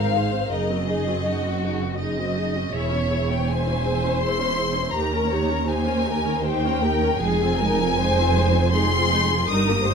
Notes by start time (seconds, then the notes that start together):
Already playing: G#1 G#2 C4 A#4 C5 F5
0.13 D#4 G#4 C5
0.32 C4 C5
0.51 F#1 F#2 D#4 G#4 A#4 D#5
0.70 C4 F#4
0.86 D#4 G#4
1.07 C4 F#4
1.25 D#4 F#4 G#4
1.43 C4 F#4
1.63 D#4 G#4
1.81 C4 F#4
1.99 D#4 G#4 D#5
2.18 C4 F#4
2.37 D#4 G#4
2.55 C4 F#4
2.72 E1 E4 G#4 C#5 E5
2.77 E2
2.92 C#4 E4
3.10 E4 G#4
3.30 C#4 E4 G5
3.49 E4 G#4 C5 G#5
3.69 C#4 E4
3.85 E4 G#4
4.03 C#4 E4
4.21 E4 G#4 C6
4.39 C#4 E4
4.56 E4 G#4
4.75 C#4 E4
4.95 D#2 D#4 G4 A#4 A#5
5.13 C#4 A#4
5.31 D#4 G4 C#5
5.50 C#4 A#4
5.67 D#4 G4 C5 G#5
5.86 C#4 A#4
6.05 D#4 G4 A#4
6.25 C#4 A#4
6.44 D#4 G4 C5 G5
6.63 C#4 A#4
6.82 D#4 G4 A#4
7.03 C#4 A#4
7.20 F1 F2 G#3 D#4 G#4 G#5
7.43 C4 F4
7.59 G#3 D#4 A#4
7.81 C4 F4
7.98 G#3 D#4 C5
8.19 C4 F4
8.38 G#3 D#4
8.55 C4 F4
8.71 G#3 D#4 G#4 C6
8.94 C4 F4
9.12 G#3 D#4
9.30 C4 F4
9.46 G1 G2 G3 D#4 A#4 D#6
9.70 A#3 G4
9.86 G3 D#4 C5